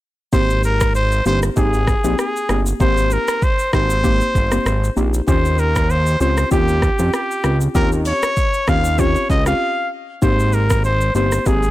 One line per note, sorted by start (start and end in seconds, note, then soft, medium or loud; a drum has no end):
0.33 1.22 G#1 loud
0.33 0.90 A#3 medium
0.33 0.90 C4 medium
0.33 0.90 D#4 medium
0.33 0.90 G4 loud
0.33 0.62 C5 loud
0.33 kick loud
0.33 shaker medium
0.50 shaker medium
0.63 0.93 A#4 loud
0.63 shaker medium
0.81 kick medium
0.81 cross-stick loud
0.81 shaker medium
0.95 1.24 C5 loud
0.95 shaker medium
1.12 shaker medium
1.26 1.50 G1 loud
1.26 1.46 A#3 medium
1.26 1.46 C4 medium
1.26 1.46 D#4 medium
1.26 1.46 G4 medium
1.26 1.40 C5 loud
1.26 shaker medium
1.43 cross-stick medium
1.43 shaker medium
1.56 1.95 G#1 loud
1.56 1.76 A#3 loud
1.56 1.76 C4 medium
1.56 1.77 D#4 medium
1.56 1.77 G4 loud
1.56 2.15 G#4 loud
1.56 kick loud
1.56 shaker medium
1.73 shaker medium
1.87 kick medium
1.87 cross-stick medium
1.87 shaker medium
2.04 2.15 A#1 medium
2.04 2.22 A#3 medium
2.04 2.22 C4 medium
2.04 2.22 D#4 medium
2.04 2.22 G4 medium
2.04 shaker medium
2.19 2.64 G#4 medium
2.19 cross-stick loud
2.19 shaker medium
2.36 shaker medium
2.49 2.74 G1 loud
2.49 2.69 A#3 medium
2.49 2.69 C4 medium
2.49 2.69 D#4 medium
2.49 2.69 G4 medium
2.49 cross-stick loud
2.49 shaker medium
2.66 shaker medium
2.80 3.18 G#1 loud
2.80 3.37 A#3 medium
2.80 3.38 C4 medium
2.80 3.38 D#4 medium
2.80 3.38 G4 loud
2.80 3.14 C5 loud
2.80 kick loud
2.80 shaker medium
2.97 shaker medium
3.11 3.45 A#4 medium
3.11 shaker medium
3.28 cross-stick loud
3.28 shaker loud
3.42 3.74 C5 loud
3.42 kick loud
3.42 shaker medium
3.59 shaker medium
3.73 4.22 G#1 loud
3.73 3.93 A#3 medium
3.73 3.93 C4 medium
3.73 3.93 D#4 medium
3.73 3.93 G4 medium
3.73 4.93 C5 loud
3.73 kick medium
3.73 cross-stick loud
3.73 shaker medium
3.90 shaker medium
4.04 4.24 A#3 loud
4.04 4.24 C4 medium
4.04 4.24 D#4 medium
4.04 4.24 G4 loud
4.04 kick loud
4.04 shaker medium
4.21 shaker medium
4.35 4.60 G1 medium
4.35 kick loud
4.35 shaker medium
4.52 4.69 A#3 medium
4.52 4.69 C4 medium
4.52 4.69 D#4 medium
4.52 4.70 G4 medium
4.52 cross-stick medium
4.52 shaker medium
4.66 4.90 G#1 loud
4.66 cross-stick loud
4.66 shaker medium
4.84 shaker medium
4.96 5.21 A#1 loud
4.96 5.16 A#3 medium
4.96 5.17 C4 medium
4.96 5.17 D#4 medium
4.96 5.17 G4 medium
4.96 shaker medium
5.14 shaker medium
5.27 6.17 D#2 loud
5.27 5.85 C4 loud
5.27 5.85 C#4 medium
5.27 5.85 F4 medium
5.27 5.85 G4 loud
5.27 5.61 C5 medium
5.27 kick loud
5.27 shaker medium
5.45 shaker medium
5.58 5.92 A#4 medium
5.58 shaker medium
5.76 kick loud
5.76 cross-stick loud
5.76 shaker medium
5.90 6.21 C5 loud
5.90 shaker medium
6.07 shaker medium
6.20 6.45 C#2 medium
6.20 6.40 C4 medium
6.20 6.40 C#4 medium
6.20 6.41 F4 medium
6.20 6.41 G4 medium
6.20 6.50 C5 medium
6.20 shaker medium
6.37 cross-stick medium
6.37 shaker medium
6.51 6.89 D#2 loud
6.51 6.71 C4 medium
6.51 6.71 C#4 medium
6.51 6.71 F4 medium
6.51 6.72 G4 loud
6.51 7.10 G4 medium
6.51 kick loud
6.51 shaker medium
6.68 shaker medium
6.82 kick loud
6.82 cross-stick medium
6.82 shaker medium
6.99 7.10 F2 medium
6.99 7.17 C4 medium
6.99 7.17 C#4 medium
6.99 7.17 F4 medium
6.99 7.17 G4 medium
6.99 shaker medium
7.14 7.58 G4 medium
7.14 cross-stick loud
7.14 shaker medium
7.31 shaker medium
7.44 7.69 C#2 medium
7.44 7.64 C4 medium
7.44 7.64 C#4 medium
7.44 7.64 F4 medium
7.44 7.64 G4 medium
7.44 cross-stick loud
7.44 shaker medium
7.61 shaker medium
7.75 8.13 D#2 loud
7.75 8.32 C4 loud
7.75 8.32 C#4 medium
7.75 8.32 F4 medium
7.75 8.33 G4 loud
7.75 7.90 A#4 loud
7.75 kick loud
7.75 shaker medium
7.92 shaker medium
8.05 8.70 C#5 loud
8.05 open hi-hat medium
8.05 shaker medium
8.23 cross-stick loud
8.23 shaker medium
8.37 kick loud
8.37 shaker medium
8.54 shaker medium
8.68 9.17 D#2 loud
8.68 8.88 C4 medium
8.68 8.88 C#4 medium
8.68 8.88 F4 medium
8.68 8.88 G4 medium
8.68 9.01 F5 loud
8.68 kick loud
8.68 cross-stick loud
8.68 shaker medium
8.85 shaker medium
8.98 9.18 C4 loud
8.98 9.19 C#4 medium
8.98 9.19 F4 medium
8.98 9.19 G4 loud
8.98 9.30 C#5 loud
8.98 kick loud
8.98 shaker medium
9.15 shaker medium
9.30 9.54 C#2 loud
9.30 9.46 D#5 loud
9.30 kick medium
9.30 shaker medium
9.46 9.61 C4 medium
9.46 9.61 C#4 medium
9.46 9.61 F4 medium
9.46 9.61 G4 medium
9.46 9.89 F5 loud
9.46 cross-stick medium
9.46 shaker medium
10.22 11.11 G#1 loud
10.22 10.80 A#3 medium
10.22 10.80 C4 medium
10.22 10.80 D#4 medium
10.22 10.80 G4 loud
10.22 10.55 C5 medium
10.22 kick loud
10.22 shaker medium
10.39 shaker medium
10.53 10.84 A#4 medium
10.53 shaker medium
10.70 kick loud
10.70 cross-stick loud
10.70 shaker medium
10.84 11.13 C5 medium
10.84 shaker medium
11.01 shaker medium
11.15 11.40 G1 loud
11.15 11.35 A#3 medium
11.15 11.35 C4 medium
11.15 11.35 D#4 medium
11.15 11.35 G4 medium
11.15 11.48 C5 medium
11.15 shaker medium
11.32 cross-stick medium
11.32 shaker medium
11.46 11.71 G#1 loud
11.46 11.66 A#3 medium
11.46 11.66 C4 medium
11.46 11.66 D#4 medium
11.46 11.66 G4 loud
11.46 11.71 G#4 medium
11.46 kick loud
11.46 shaker medium
11.63 shaker medium